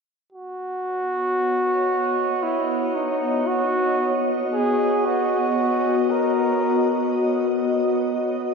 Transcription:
0.31 B3 F#4
0.49 F#4
0.56 C#5
1.09 D#5
2.43 E4
2.95 D#4
3.47 F#4
4.53 G#4
5.05 F#4
6.11 A#4

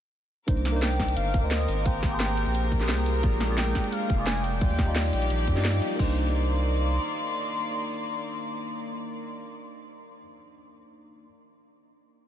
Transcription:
0.47 C2 D#3 A#3 D4 D#4 A#4 C5 D6, kick, closed hi-hat
0.57 tambourine
0.65 snare, closed hi-hat, tambourine
0.72 A#3 D4 D#4
0.76 C5
0.82 G5, snare, closed hi-hat
0.91 tambourine
1.00 kick, snare, closed hi-hat, tambourine
1.08 closed hi-hat
1.16 G1 F5, closed hi-hat
1.26 tambourine
1.34 kick, closed hi-hat, tambourine
1.41 D2 A#3 C4 D#4
1.45 C5
1.50 D#5, snare, closed hi-hat
1.60 tambourine
1.68 G#1, closed hi-hat, tambourine
1.85 A#3 C4 G4 G#4 C5 G5, kick, closed hi-hat
1.95 tambourine
2.03 G#1, kick, snare, closed hi-hat, tambourine
2.10 A#3 G4 G#4
2.14 C5
2.20 snare, closed hi-hat
2.29 tambourine
2.37 closed hi-hat, tambourine
2.46 A#1, closed hi-hat
2.55 closed hi-hat
2.64 tambourine
2.72 kick, closed hi-hat, tambourine
2.79 A#3 G4 G#4, snare
2.83 C5
2.89 C2, snare, closed hi-hat
2.98 tambourine
3.06 closed hi-hat, tambourine
3.22 A#1 G#3 A#3 D4 F4 G#4 D5, kick, closed hi-hat
3.32 tambourine
3.40 snare, closed hi-hat, tambourine
3.47 A#3 F4 G#4
3.52 D5
3.58 G5, snare, closed hi-hat
3.67 tambourine
3.75 kick, snare, closed hi-hat, tambourine
3.84 closed hi-hat
3.92 F5, closed hi-hat
4.01 tambourine
4.10 F1, kick, closed hi-hat, tambourine
4.16 A#3 F4 G#4
4.21 D5
4.26 G#5, snare, closed hi-hat
4.36 tambourine
4.43 G5, closed hi-hat, tambourine
4.60 D#2 F3 G3 D#4 F4 G4 D5, kick, closed hi-hat
4.70 tambourine
4.79 kick, snare, closed hi-hat, tambourine
4.85 G3 D#4 F4
4.90 D5
4.96 snare, closed hi-hat
5.05 tambourine
5.13 A#1, closed hi-hat, tambourine
5.22 closed hi-hat
5.30 A#1, closed hi-hat
5.39 tambourine
5.47 G2, kick, closed hi-hat, tambourine
5.55 G3 D#4 F4, snare
5.59 D5
5.65 snare, closed hi-hat
5.74 tambourine
5.82 closed hi-hat, tambourine
5.96 C2 D#3 A#3 D4 D5 C6, kick, crash
6.00 D#4 C5

